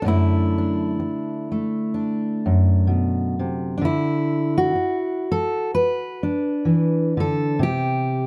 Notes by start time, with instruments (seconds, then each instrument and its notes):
0.02 steel-string acoustic guitar F#2 D3 D4
0.06 steel-string acoustic guitar A3 D4 E4
0.58 steel-string acoustic guitar D4
0.99 muted steel-string acoustic guitar stroke
1.52 steel-string acoustic guitar A3
1.94 steel-string acoustic guitar D4
2.46 steel-string acoustic guitar F#2
2.87 steel-string acoustic guitar B2
3.39 steel-string acoustic guitar C3
3.78 steel-string acoustic guitar D3 D4
3.85 steel-string acoustic guitar E4
4.58 steel-string acoustic guitar F#4
4.75 muted steel-string acoustic guitar stroke
5.32 steel-string acoustic guitar A4
5.75 steel-string acoustic guitar B4
6.23 steel-string acoustic guitar D4
6.65 steel-string acoustic guitar E3
7.17 steel-string acoustic guitar D3 A4
7.59 steel-string acoustic guitar C3 G4